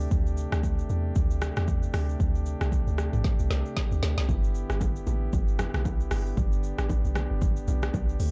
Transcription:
0.00 4.25 C3 medium
0.00 4.25 A3 medium
0.00 4.25 D4 medium
0.00 8.31 G4 medium
0.00 shaker medium
0.11 0.47 D2 loud
0.11 kick loud
0.11 shaker medium
0.26 shaker medium
0.37 shaker medium
0.52 0.84 D2 loud
0.52 cross-stick loud
0.52 shaker medium
0.63 kick medium
0.63 shaker medium
0.79 shaker medium
0.90 1.12 E2 medium
0.90 shaker medium
1.16 1.51 D2 loud
1.16 kick loud
1.16 shaker medium
1.31 shaker medium
1.42 cross-stick loud
1.42 shaker loud
1.57 1.89 E2 loud
1.57 cross-stick loud
1.57 shaker soft
1.68 kick loud
1.68 shaker medium
1.83 shaker medium
1.94 2.16 D2 loud
1.94 cross-stick loud
1.94 open hi-hat medium
1.94 shaker medium
2.09 shaker medium
2.20 2.55 D2 loud
2.20 kick loud
2.20 shaker medium
2.35 shaker medium
2.46 shaker medium
2.61 2.84 C2 medium
2.61 cross-stick loud
2.61 shaker medium
2.72 kick medium
2.72 shaker medium
2.87 3.10 D2 medium
2.87 shaker medium
2.98 cross-stick medium
2.98 shaker medium
3.13 3.23 A1 medium
3.13 mid tom loud
3.13 shaker medium
3.24 kick loud
3.24 snare medium
3.24 shaker medium
3.39 3.49 C2 medium
3.39 shaker medium
3.50 3.63 C2 medium
3.50 snare medium
3.50 shaker loud
3.66 shaker soft
3.77 kick loud
3.77 snare medium
3.77 shaker medium
3.92 4.01 D2 medium
3.92 shaker medium
4.03 4.16 D2 medium
4.03 snare loud
4.03 shaker medium
4.18 4.27 C2 loud
4.18 snare loud
4.18 shaker medium
4.29 4.64 G1 loud
4.29 8.31 D3 medium
4.29 8.16 B3 medium
4.29 6.35 E4 medium
4.29 kick loud
4.29 low conga medium
4.29 shaker medium
4.44 shaker medium
4.55 shaker medium
4.70 5.02 G1 loud
4.70 cross-stick medium
4.70 shaker medium
4.81 kick medium
4.81 high bongo medium
4.81 shaker medium
4.96 shaker medium
5.07 5.29 A1 loud
5.07 low bongo medium
5.07 shaker medium
5.33 5.69 G1 loud
5.33 kick loud
5.33 low conga medium
5.33 shaker medium
5.48 shaker medium
5.59 cross-stick loud
5.59 high bongo medium
5.59 low conga medium
5.59 shaker loud
5.74 6.06 B1 loud
5.74 cross-stick loud
5.74 low bongo medium
5.74 shaker soft
5.85 kick loud
5.85 high bongo medium
5.85 shaker medium
6.00 shaker medium
6.11 6.34 G1 loud
6.11 cross-stick loud
6.11 open hi-hat medium
6.11 low bongo medium
6.11 shaker medium
6.26 shaker medium
6.37 6.73 G1 loud
6.37 8.18 D4 medium
6.37 kick loud
6.37 low conga medium
6.37 shaker medium
6.52 shaker medium
6.63 shaker medium
6.78 7.01 A1 medium
6.78 cross-stick loud
6.78 shaker medium
6.89 kick medium
6.89 high bongo medium
6.89 shaker medium
7.05 7.27 B1 medium
7.05 shaker medium
7.15 cross-stick loud
7.15 low bongo medium
7.15 shaker medium
7.31 7.63 G1 medium
7.41 kick loud
7.41 low conga medium
7.41 shaker loud
7.57 shaker medium
7.68 7.90 B1 medium
7.68 high bongo medium
7.68 low conga medium
7.68 shaker loud
7.83 cross-stick loud
7.83 low bongo medium
7.83 shaker soft
7.94 8.16 B1 loud
7.94 kick medium
7.94 high bongo medium
7.94 shaker medium
8.09 shaker medium
8.20 8.31 D2 loud
8.20 8.31 A3 medium
8.20 8.31 C4 medium
8.20 open hi-hat medium
8.20 low bongo medium
8.20 shaker loud

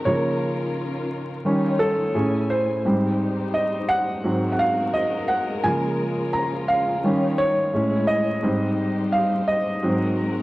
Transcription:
0.00 1.40 D#3 medium
0.00 1.42 A#4 medium
0.05 1.41 C#3 medium
0.05 1.41 F3 soft
0.05 1.41 A#3 medium
0.05 1.44 C#4 medium
0.05 1.44 F4 medium
0.05 1.85 C#5 loud
1.45 1.93 D#3 medium
1.45 2.14 G3 medium
1.45 1.94 G3 medium
1.45 2.13 C#4 medium
1.45 1.94 C#4 medium
1.45 2.14 D#4 medium
1.45 2.14 F4 medium
1.45 2.14 C#5 medium
1.79 2.51 A4 loud
2.14 2.81 A2 medium
2.14 2.83 A3 medium
2.14 2.83 C#4 medium
2.14 2.81 C#4 medium
2.14 2.83 E4 medium
2.14 2.81 G#4 medium
2.14 2.84 G#5 medium
2.50 3.57 C5 medium
2.84 3.33 G#2 medium
2.84 4.22 G3 medium
2.84 3.33 G3 medium
2.84 3.34 C4 medium
2.84 4.23 D#4 medium
2.84 4.22 G4 medium
2.84 4.22 C5 medium
3.54 3.90 D#5 medium
3.89 4.48 F#5 loud
4.24 5.59 G#2 medium
4.24 5.60 F#3 medium
4.24 7.00 G#3 medium
4.24 5.62 C4 medium
4.24 5.60 C4 medium
4.24 5.62 F#4 medium
4.24 7.00 A#4 medium
4.52 4.58 F#5 medium
4.59 4.95 F5 loud
4.94 5.29 D#5 loud
5.28 5.64 F#5 loud
5.64 6.12 C#3 medium
5.64 6.12 F3 medium
5.64 6.13 A#3 medium
5.64 7.71 C#4 medium
5.64 7.71 F4 medium
5.64 6.35 G#5 loud
6.33 6.69 A#5 loud
6.68 7.40 F5 loud
7.03 7.70 D#3 medium
7.03 7.72 G3 medium
7.03 7.70 G3 medium
7.03 7.70 C#4 medium
7.03 7.72 D#4 medium
7.03 7.71 C#5 medium
7.38 8.10 C#5 loud
7.72 8.39 A2 medium
7.72 8.41 G#3 medium
7.72 8.39 G#3 medium
7.72 8.40 C#4 medium
7.72 8.42 E4 medium
7.72 8.42 G#4 medium
7.72 8.41 C#5 medium
8.07 9.15 D#5 loud
8.42 9.43 G#2 medium
8.42 9.80 G3 medium
8.42 9.43 G3 medium
8.42 9.44 C4 medium
8.42 9.80 D#4 medium
8.42 9.80 G4 medium
8.42 9.80 C5 medium
9.12 9.20 F5 loud
9.48 10.42 D#5 loud
9.81 10.42 G#2 medium
9.81 10.42 F#3 medium
9.81 10.42 G#3 medium
9.81 10.42 C4 medium
9.81 10.42 F#4 medium
9.81 10.42 A#4 medium

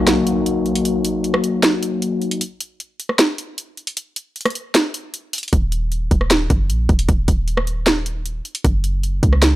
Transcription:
0.00 2.35 F#3 medium
0.00 2.36 A#3 medium
0.00 2.37 D#4 medium
0.00 2.38 F#4 loud
0.00 impact medium
0.07 snare loud
0.07 closed hi-hat medium
0.27 closed hi-hat medium
0.46 closed hi-hat medium
0.66 closed hi-hat soft
0.76 closed hi-hat medium
0.85 closed hi-hat medium
1.05 closed hi-hat medium
1.24 closed hi-hat medium
1.34 cross-stick loud
1.44 closed hi-hat medium
1.63 snare loud
1.63 closed hi-hat medium
1.83 closed hi-hat medium
2.02 closed hi-hat medium
2.22 closed hi-hat soft
2.31 closed hi-hat medium
2.41 closed hi-hat medium
2.60 closed hi-hat medium
2.80 closed hi-hat medium
3.00 closed hi-hat medium
3.09 cross-stick medium
3.19 snare loud
3.19 closed hi-hat medium
3.38 closed hi-hat medium
3.58 closed hi-hat medium
3.77 closed hi-hat soft
3.87 closed hi-hat medium
3.97 closed hi-hat medium
4.16 closed hi-hat medium
4.36 closed hi-hat medium
4.41 closed hi-hat medium
4.45 cross-stick loud
4.45 closed hi-hat medium
4.50 closed hi-hat medium
4.55 closed hi-hat medium
4.75 snare loud
4.75 closed hi-hat medium
4.94 closed hi-hat medium
5.14 closed hi-hat medium
5.33 closed hi-hat medium
5.33 open hi-hat medium
5.38 closed hi-hat medium
5.43 closed hi-hat medium
5.48 closed hi-hat soft
5.53 6.09 D#1 loud
5.53 kick loud
5.53 closed hi-hat medium
5.72 closed hi-hat medium
5.92 closed hi-hat medium
6.11 6.49 D#1 loud
6.11 kick medium
6.11 closed hi-hat medium
6.21 cross-stick medium
6.31 snare loud
6.31 closed hi-hat medium
6.50 6.71 F#1 loud
6.50 kick loud
6.50 closed hi-hat medium
6.70 6.88 A#1 loud
6.70 closed hi-hat medium
6.89 7.08 D#1 loud
6.89 kick loud
6.89 closed hi-hat soft
6.99 closed hi-hat medium
7.09 7.27 D#1 loud
7.09 kick loud
7.09 closed hi-hat medium
7.28 8.41 D#1 loud
7.28 kick loud
7.28 closed hi-hat medium
7.48 closed hi-hat medium
7.57 cross-stick loud
7.67 closed hi-hat medium
7.87 snare loud
7.87 closed hi-hat medium
8.06 closed hi-hat medium
8.26 closed hi-hat medium
8.45 closed hi-hat soft
8.55 closed hi-hat medium
8.64 9.21 F#1 loud
8.64 kick loud
8.64 closed hi-hat medium
8.84 closed hi-hat medium
9.03 closed hi-hat medium
9.23 9.56 C#2 loud
9.23 kick medium
9.23 closed hi-hat medium
9.33 cross-stick medium
9.42 snare loud
9.42 closed hi-hat medium

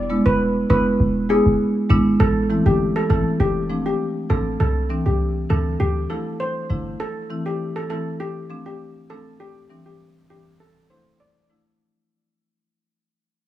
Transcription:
0.00 0.21 E1 loud
0.10 0.22 G#3 medium
0.10 0.23 B3 medium
0.10 0.23 D4 medium
0.10 0.23 E4 medium
0.26 0.65 E1 loud
0.26 0.35 B4 medium
0.70 0.97 F1 loud
0.70 0.82 G#3 medium
0.70 0.83 B3 medium
0.70 0.83 D4 medium
0.70 0.83 E4 medium
0.70 0.81 B4 medium
1.00 1.41 E1 loud
1.29 1.42 G#3 medium
1.29 1.43 B3 medium
1.29 1.43 D4 medium
1.29 1.43 E4 medium
1.29 1.40 G#4 medium
1.46 1.58 E1 medium
1.90 2.17 G#1 medium
1.90 2.02 G#3 medium
1.90 2.03 B3 medium
1.90 2.03 D4 medium
1.90 2.03 E4 loud
2.20 2.61 A1 loud
2.20 2.31 A4 loud
2.49 2.62 E3 medium
2.49 2.63 A3 medium
2.49 2.63 C4 medium
2.49 2.63 E4 medium
2.66 2.92 G1 loud
2.66 2.75 G4 medium
2.96 3.05 A4 medium
3.10 3.24 A1 loud
3.10 3.22 E3 medium
3.10 3.23 A3 medium
3.10 3.23 C4 medium
3.10 3.23 E4 medium
3.10 3.21 A4 medium
3.40 3.93 F1 loud
3.40 3.50 G4 medium
3.69 3.82 F3 medium
3.69 3.83 A3 medium
3.69 3.83 C4 medium
3.69 3.83 D4 medium
3.86 3.95 G4 medium
4.29 4.57 A1 medium
4.29 4.42 F3 medium
4.29 4.43 A3 medium
4.29 4.43 C4 medium
4.29 4.43 D4 medium
4.29 4.40 A4 medium
4.60 5.01 C2 loud
4.60 4.71 A4 medium
4.89 5.02 E3 medium
4.89 5.03 G3 medium
4.89 5.03 C4 medium
4.89 5.03 D4 medium
5.06 5.45 C2 medium
5.06 5.15 G4 medium
5.49 5.77 D2 medium
5.49 5.62 E3 medium
5.49 5.63 G3 medium
5.49 5.63 C4 medium
5.49 5.63 D4 medium
5.49 5.60 A4 medium
5.80 6.07 D2 loud
5.80 5.90 G4 medium
6.09 6.22 F3 medium
6.09 6.23 A3 medium
6.09 6.23 D4 medium
6.09 6.23 E4 medium
6.09 6.20 A4 medium
6.40 6.83 C5 medium
6.70 6.97 G1 medium
6.70 6.82 F3 medium
6.70 6.83 A3 medium
6.70 6.83 D4 medium
6.70 6.83 E4 medium
7.00 7.10 A4 loud
7.30 7.42 E3 medium
7.30 7.43 A3 medium
7.30 7.43 C4 medium
7.30 7.43 E4 medium
7.46 7.55 G4 medium
7.76 7.85 A4 medium
7.90 8.02 E3 medium
7.90 8.03 A3 medium
7.90 8.03 C4 medium
7.90 8.03 E4 medium
7.90 8.00 A4 medium
8.20 8.31 G4 medium
8.50 8.62 F3 medium
8.50 8.63 A3 medium
8.50 8.63 C4 medium
8.50 8.63 D4 medium
8.66 8.75 G4 medium
9.10 9.22 F3 medium
9.10 9.23 A3 medium
9.10 9.23 C4 medium
9.10 9.23 D4 medium
9.10 9.21 A4 medium
9.40 9.51 G4 medium
9.70 9.82 E3 medium
9.70 9.83 G3 medium
9.70 9.83 C4 medium
9.70 9.83 D4 medium
9.86 9.95 G4 medium
10.30 10.42 E3 medium
10.30 10.43 G3 medium
10.30 10.43 C4 medium
10.30 10.43 D4 medium
10.30 10.41 G4 medium
10.60 10.71 A4 medium
10.89 11.02 F3 medium
10.89 11.03 A3 medium
10.89 11.03 D4 medium
10.89 11.03 E4 medium
10.89 11.01 C5 medium
11.20 11.63 D5 medium
11.49 11.62 F3 medium
11.49 11.63 A3 medium
11.49 11.63 D4 medium
11.49 11.63 E4 medium

